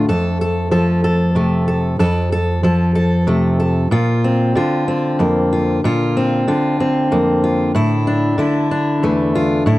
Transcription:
Already playing: A3
0.09 F2 A4
0.41 A4
0.71 F3 A4
1.04 A4
1.35 C3 A3
1.68 A4
1.99 F2 A4
2.32 A4
2.63 F3 A4
2.95 A4
3.27 C3 A3
3.60 A4
3.91 A#2 F4
4.24 C4
4.55 D3 F4
4.88 C4
5.19 F2 A#3
5.53 F4
5.84 A#2 F4
6.17 C4
6.48 D3 F4
6.80 C4
7.11 F2 A#3
7.44 F4
7.75 A2 E4
8.07 D4
8.38 D3 E4
8.71 D4
9.03 E2 A3
9.35 F4
9.66 A2 E4

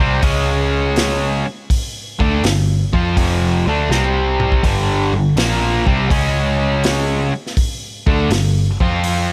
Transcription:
0.00 C2 C3 G3 C4
0.22 C#2 C#3 G#3 C#4, kick, open hi-hat
0.96 snare, open hi-hat
1.70 kick, open hi-hat
2.19 D2 D3 A3 D4, kick
2.43 G1 G2 D3, snare, open hi-hat
2.93 F2 F3 C4 F4, kick
3.17 F1 F2 C3 F3, kick, open hi-hat
3.66 D2 D3 A3 D4
3.89 C2 C3 G3 C4, snare
4.40 mid tom
4.52 kick
4.63 G1 G2 D3 G3, kick, open hi-hat
5.12 G1 G2 D3
5.36 A#1 A#2 F3 A#3, snare, open hi-hat
5.86 C2 C3 G3 C4, kick
6.10 C#2 C#3 G#3 C#4, kick, open hi-hat
6.84 snare, open hi-hat
7.47 snare
7.57 kick, open hi-hat
8.07 D2 D3 A3 D4, kick
8.30 G1 G2 D3, snare, open hi-hat
8.80 F2 F3 C4 F4, kick
9.04 open hi-hat

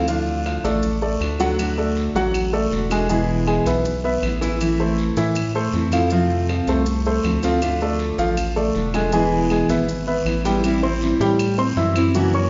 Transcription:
Already playing: D2
0.07 D3 F3 A3 D4 F4 F5, long guiro, maracas
0.27 maracas
0.46 F3 F4 F5, short guiro, claves, maracas
0.64 A1 A3 A4 D5, short guiro, maracas
0.83 muted steel-string acoustic guitar stroke, long guiro, maracas
1.02 A3 A4 D5, maracas
1.21 D2 D3 A3 D4 F4, short guiro, claves, maracas
1.39 F#3 A3 D4 F4 F#4 F#5, short guiro, maracas
1.58 D3 A3 D4 F#4, long guiro, claves, maracas
1.78 A3 A4 D5, maracas
1.97 short guiro, maracas
2.15 A1 F#3 F#4 F#5, short guiro, maracas
2.34 muted steel-string acoustic guitar stroke, long guiro, claves, maracas
2.53 A3 A4 D5, maracas
2.71 E1 D3 A3 D4 F#4, short guiro, maracas
2.90 G#3 A3 D4 F#4 G#4 G#5, short guiro, claves, maracas
3.09 B2 E3 G#3 B3 E4 G#4 G#5, long guiro, maracas
3.28 maracas
3.47 G#3 G#4 G#5, short guiro, claves, maracas
3.66 B1 B3 B4 E5, short guiro, maracas
3.85 muted steel-string acoustic guitar stroke, long guiro, maracas
4.04 B3 B4 E5, maracas
4.23 A1 E3 G#3 B3 E4, short guiro, claves, maracas
4.41 E3 G#3 B3 E4 E5, short guiro, maracas
4.60 E3 A3 C4 E4, claves, maracas
4.79 A3 A4 C5, maracas
4.98 short guiro, maracas
5.17 A2 E3 E4 E5, short guiro, maracas
5.35 muted steel-string acoustic guitar stroke, long guiro, claves, maracas
5.55 A3 A4 C5, maracas
5.73 F2 E3 A3 C4 E4, short guiro, maracas
5.92 F3 A3 C4 E4 F4 F5, short guiro, claves, maracas
6.10 C3 F3 A3 C4 F4 F5, long guiro, maracas
6.30 maracas
6.48 F3 F4 F5, short guiro, claves, maracas
6.67 C2 A3 A4 C5, short guiro, maracas
6.86 muted steel-string acoustic guitar stroke, long guiro, maracas
7.05 A3 A4 C5, maracas
7.24 D2 F3 A3 C4 F4, short guiro, claves, maracas
7.42 F3 A3 C4 F4 F5, short guiro, maracas
7.61 D3 A3 D4 F4, long guiro, claves, maracas
7.81 A3 A4 D5, maracas
7.99 short guiro, maracas
8.18 A1 F3 F4 F5, short guiro, maracas
8.37 muted steel-string acoustic guitar stroke, long guiro, claves, maracas
8.56 A3 A4 D5, maracas
8.75 E1 D3 A3 D4 F4, short guiro, maracas
8.94 G#3 A3 D4 F4 G#4 G#5, short guiro, claves, maracas
9.12 B2 E3 G#3 B3 E4 G#4 G#5, long guiro, maracas
9.32 maracas
9.50 G#3 G#4 G#5, short guiro, claves, maracas
9.69 G#1 B3 B4 E5, short guiro, maracas
9.88 muted steel-string acoustic guitar stroke, long guiro, maracas
10.07 B3 B4 E5, maracas
10.25 A1 E3 G#3 B3 E4, short guiro, claves, maracas
10.44 E3 G3 G#3 B3 E4 G4 G5, short guiro, maracas
10.63 E3 G3 C4 E4, long guiro, claves, maracas
10.82 G3 C4 E4 C5 C6, maracas
11.01 E3 G3 C4 E4, short guiro, maracas
11.20 A2 G3 G4 G5, short guiro, maracas
11.39 muted steel-string acoustic guitar stroke, long guiro, claves, maracas
11.58 C4 C5 C6, maracas
11.77 F#2 E3 G3 C4 E4 E5 E6, short guiro, maracas
11.95 G3 C4 E4, short guiro, claves, maracas
12.14 C#3 E3 F#3 A#3 C#4 F#4 F#5, long guiro, maracas
12.33 E3 A#3 C#4 F#4 C#5 C#6, maracas

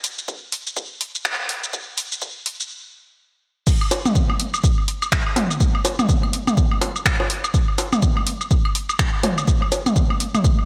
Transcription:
0.04 open hi-hat, shaker
0.18 shaker
0.28 kick, shaker
0.52 open hi-hat, shaker
0.67 shaker
0.77 kick, shaker
1.01 open hi-hat
1.15 shaker
1.25 finger snap, kick, shaker
1.49 open hi-hat
1.64 shaker
1.73 kick, shaker
1.98 open hi-hat, shaker
2.12 shaker
2.22 kick, shaker
2.46 open hi-hat, shaker
2.60 shaker
3.67 kick, crash, shaker
3.81 claves, low woodblock
3.91 open hi-hat, high bongo, shaker
4.06 mid tom, low woodblock, shaker
4.15 kick, shaker
4.30 low woodblock
4.40 open hi-hat, claves, shaker
4.54 low woodblock, shaker
4.64 kick, shaker
4.78 low woodblock
4.88 open hi-hat
5.02 claves, low woodblock, shaker
5.12 finger snap, kick, shaker
5.26 low woodblock
5.36 mid tom, open hi-hat, high bongo, shaker
5.51 low woodblock, shaker
5.60 kick, claves, shaker
5.75 low woodblock
5.85 open hi-hat, high bongo, shaker
5.99 mid tom, low woodblock, shaker
6.09 kick, shaker
6.23 claves, low woodblock
6.33 open hi-hat, shaker
6.47 mid tom, low woodblock, shaker
6.57 kick, shaker
6.71 low woodblock
6.81 open hi-hat, high bongo, claves
6.96 low woodblock, shaker
7.06 finger snap, kick, shaker
7.20 high bongo, low woodblock
7.30 open hi-hat, shaker
7.44 claves, low woodblock, shaker
7.54 kick, shaker
7.68 low woodblock
7.78 open hi-hat, high bongo, shaker
7.93 mid tom, low woodblock, shaker
8.02 kick, claves, shaker
8.17 low woodblock
8.27 open hi-hat, shaker
8.41 low woodblock, shaker
8.51 kick, shaker
8.65 claves, low woodblock
8.75 open hi-hat
8.89 low woodblock, shaker
8.99 finger snap, kick, shaker
9.14 low woodblock
9.23 mid tom, open hi-hat, high bongo, claves, shaker
9.38 low woodblock, shaker
9.48 kick, shaker
9.62 low woodblock
9.72 open hi-hat, high bongo, shaker
9.86 mid tom, claves, low woodblock, shaker
9.96 kick, shaker
10.10 low woodblock
10.20 open hi-hat, shaker
10.35 mid tom, low woodblock, shaker
10.44 kick, claves, shaker
10.59 low woodblock

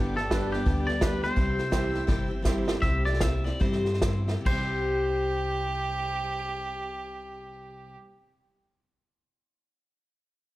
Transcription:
Already playing: G1 G2 D3 G3 B3 D4 G4 B4 D5 G5 D6
0.15 G3 B3 D4 G4 A4, snare
0.30 G3 B3 D4 G4 B4, kick, snare, hi-hat pedal
0.52 G3 B3 D4 G4, snare
0.66 D2 G2 D3 G3 B3 D4 G4, kick, snare
0.87 G3 B3 D4 G4 D5, snare
1.01 G3 B3 D4 G4 B4, kick, snare, hi-hat pedal
1.23 G3 B3 D4 G4 C5, snare
1.36 C2 C3 G3 C4 E4 G4 C5 E5 E6, kick, snare
1.58 C4 E4 G4, snare
1.71 G3 C4 E4 G4 C5, kick, snare, hi-hat pedal
1.94 C4 E4 G4, snare
2.07 G1 C3 G3 C4 E4 G4, kick, snare
2.28 C4 E4 G4
2.42 G3 C4 E4 G4 C5, kick, snare, hi-hat pedal
2.65 C4 E4 G4, snare
2.82 C2 C3 G3 C4 E4 G4 E5, kick, snare
3.05 C4 E4 G4 D5, snare
3.13 snare
3.20 G3 C4 E4 G4 E5, kick, snare, hi-hat pedal
3.44 C4 E4 G4 D5, snare
3.59 G2 C3 G3 C4 E4 G4 C5, kick, snare
3.72 snare
3.85 C4 E4 G4, snare
3.94 snare
4.01 G3 C4 E4 G4, kick, snare, hi-hat pedal
4.28 C4 E4 G4, snare
4.41 C3
4.45 C2 G3 G4 C5, kick, crash
4.51 C4 E4
4.60 G4

